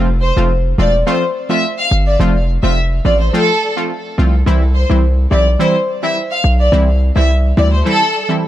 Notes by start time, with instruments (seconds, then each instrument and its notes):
Already playing: 808-style bass F1, synth stab C4 F4
0.21 violin section C5
0.36 808-style bass F1, synth stab F3 A3 C4 F4
0.78 808-style bass E1, synth stab F3 A3 C4 F4, violin section D5
1.06 synth stab F3 A3 C4 F4, violin section C5
1.49 synth stab F3 A3 C4 F4, violin section E5
1.78 violin section F5
1.91 808-style bass G1
2.07 violin section D5
2.20 808-style bass F1, synth stab F3 A3 C4 F4
2.63 808-style bass F1, synth stab F3 A3 C4 F4, violin section E5
3.05 808-style bass A1, synth stab F3 A3 C4 F4, violin section D5
3.20 violin section C5
3.33 synth stab F3 A3 C4 F4, violin section A4
3.76 synth stab F3 A3 C4 F4
4.18 808-style bass C2, synth stab F3 A3 C4 F4
4.46 808-style bass C2, synth stab E3 G3 C4 E4
4.75 violin section C5
4.89 808-style bass C2, synth stab E3 G3 C4 E4
5.31 808-style bass B1, synth stab E3 G3 C4 E4, violin section D5
5.59 synth stab E3 G3 C4 E4, violin section C5
6.02 synth stab E3 G3 C4 E4, violin section E5
6.31 violin section F5
6.44 808-style bass B1
6.60 violin section D5
6.72 808-style bass C2, synth stab E3 G3 C4 E4
7.15 808-style bass C2, synth stab E3 G3 C4 E4, violin section E5
7.57 808-style bass D2, synth stab E3 G3 C4 E4, violin section D5
7.73 violin section C5
7.85 synth stab E3 G3 C4 E4, violin section A4
8.29 synth stab E3 G3 C4 E4